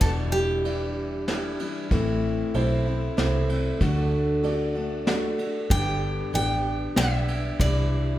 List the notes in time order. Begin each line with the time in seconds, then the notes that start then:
0.01 E1 E2 B2 E3 G3 D4 E4 A4, kick, ride
0.32 G4
0.64 E3 G3 D4 E4 G4 D5, ride
1.27 E3 G3 D4 E4 G4 A4, snare, ride
1.60 E3 G3 D4 E4, ride
1.91 A1 A2 E3 A3 C4 E4, kick, ride
2.54 B1 E3 A3 C4 E4 A4 C5, ride
2.87 A3 C4 E4
3.17 C2 E3 A3 C4 E4 A4 C5, snare, ride
3.48 A3 C4 E4, ride
3.81 D2 D3 A3 D4 F#4, kick, ride
4.43 D3 A3 D4 F#4 A4 D5, ride
4.75 A3 D4 F#4
5.06 D3 A3 D4 F#4 A4 D5, snare, ride
5.38 A3 D4 F#4, ride
5.70 G1 G2 D3 G3 B3 D4 G4 G5, kick, ride
6.33 A1 G3 B3 D4 G4 B4 D5 G5, ride
6.95 B1 G3 B3 D4 G4 B4 D5 E5, snare, ride
7.28 ride
7.59 C2 C3 E3 G3 D4 E4 D5, kick, ride